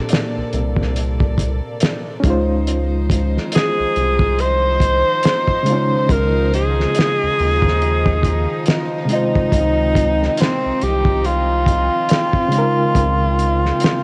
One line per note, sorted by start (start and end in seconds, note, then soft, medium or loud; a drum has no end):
0.00 2.18 A#2 medium
0.00 2.19 C3 medium
0.00 2.19 A#3 medium
0.00 2.20 D4 medium
0.00 2.19 A4 medium
0.00 2.21 A4 medium
0.00 2.20 D5 medium
0.00 2.23 D5 medium
0.09 closed hi-hat medium
0.13 snare loud
0.37 0.44 C2 medium
0.53 1.61 C2 medium
0.53 closed hi-hat medium
0.77 kick medium
0.82 snare soft
0.96 closed hi-hat medium
1.20 kick medium
1.38 kick medium
1.38 closed hi-hat medium
1.80 snare loud
1.80 closed hi-hat loud
2.20 5.62 G#3 medium
2.20 5.61 C#4 medium
2.20 kick loud
2.20 closed hi-hat medium
2.24 3.38 C#2 loud
2.24 14.03 D#3 medium
2.24 14.03 F3 medium
2.24 14.03 D#4 medium
2.24 5.63 D#4 medium
2.24 5.64 F4 medium
2.24 9.06 C5 medium
2.30 5.66 C5 medium
2.67 closed hi-hat medium
3.10 kick loud
3.10 closed hi-hat medium
3.37 snare soft
3.52 4.42 G#4 loud
3.52 closed hi-hat medium
3.56 snare loud
3.80 3.86 C2 medium
3.96 5.04 C2 medium
3.96 closed hi-hat medium
4.19 kick loud
4.39 6.13 C5 loud
4.39 closed hi-hat medium
4.80 kick medium
4.80 closed hi-hat medium
5.23 snare loud
5.23 closed hi-hat loud
5.48 kick medium
5.63 9.03 C#3 medium
5.63 9.05 G#3 medium
5.63 closed hi-hat medium
5.68 9.06 D#4 medium
5.68 9.07 F4 medium
5.73 9.08 C#4 medium
6.09 6.86 C#2 loud
6.09 6.53 A#4 loud
6.09 kick loud
6.09 closed hi-hat medium
6.54 8.83 G#4 loud
6.54 closed hi-hat medium
6.80 snare soft
6.95 closed hi-hat medium
6.99 snare loud
7.23 7.29 D#2 medium
7.39 8.47 D#2 loud
7.39 open hi-hat soft
7.62 kick medium
7.68 snare soft
7.82 closed hi-hat medium
8.06 kick loud
8.23 kick medium
8.23 closed hi-hat medium
8.66 snare loud
8.66 closed hi-hat medium
9.05 12.46 C3 medium
9.05 12.47 G#3 medium
9.05 closed hi-hat medium
9.10 14.03 C4 medium
9.10 12.49 D#4 medium
9.10 10.42 D#4 loud
9.10 12.50 F4 medium
9.15 12.51 C5 medium
9.35 kick loud
9.52 10.29 C#2 loud
9.52 kick loud
9.52 closed hi-hat medium
9.95 kick loud
9.95 closed hi-hat medium
10.23 snare soft
10.37 10.85 C4 medium
10.37 closed hi-hat medium
10.42 snare loud
10.66 10.72 C2 medium
10.81 11.90 C2 medium
10.81 11.28 G4 loud
10.81 closed hi-hat medium
11.05 kick medium
11.24 14.03 F4 loud
11.24 closed hi-hat medium
11.66 kick medium
11.66 closed hi-hat medium
12.09 snare loud
12.09 closed hi-hat medium
12.33 kick medium
12.48 14.03 C#3 medium
12.48 14.03 G#3 medium
12.48 closed hi-hat medium
12.53 14.03 D#4 medium
12.53 14.03 F4 medium
12.58 14.03 A#4 loud
12.95 13.72 C#2 loud
12.95 kick loud
12.95 closed hi-hat medium
13.39 closed hi-hat medium
13.65 snare soft
13.80 closed hi-hat medium
13.84 snare loud